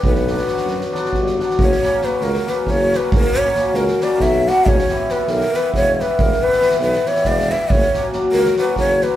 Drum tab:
SD |-ooooooooooooo|-oo-o-ooo-o-o-|----o-ooo-o-o-|-oo-o-ooo-o-o-|
BD |o---------o---|o---------o---|o---------o---|o---------o---|

SD |-o-oooooooooo-|-oo-o-ooo-o-o-|
BD |o---------o---|o---------o---|